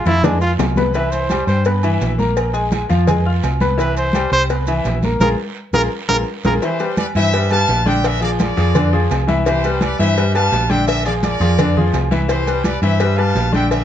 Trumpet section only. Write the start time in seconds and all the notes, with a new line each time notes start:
6.63 G4 C5
6.99 B4 D5
7.16 C5 E5
7.52 F5 A5
7.87 E5 G5
8.05 A#4 E5
8.23 A#4 D5
8.41 A#4 D5
9.47 G4 C5
9.82 B4 D5
9.99 C5 E5
10.34 F5 A5
10.69 E5 G5
10.87 A#4 E5
11.06 A#4 D5
11.24 A#4 D5
12.30 G4 C5
12.64 B4 D5
12.82 C5 E5
13.17 F5 A5
13.54 E5 G5
13.71 A#4 E5